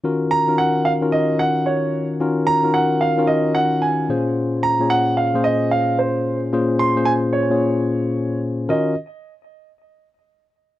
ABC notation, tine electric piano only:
X:1
M:4/4
L:1/16
Q:"Swing 16ths" 1/4=111
K:Ebdor
V:1 name="Tine electric piano"
[E,DFGB]2 z [E,DFGB]3 z [E,DFGB]4- [E,DFGB] z4 | [E,DFGB]2 z [E,DFGB]3 z [E,DFGB]4- [E,DFGB] z2 [B,,DFAc]2- | [B,,DFAc]2 z [B,,DFAd]3 z [B,,DFAc]4- [B,,DFAc] z4 | [B,,DFAc]2 z [B,,DFAc]3 z [B,,DFAd]4- [B,,DFAd] z4 |
[E,DFGB]2 z12 z2 |]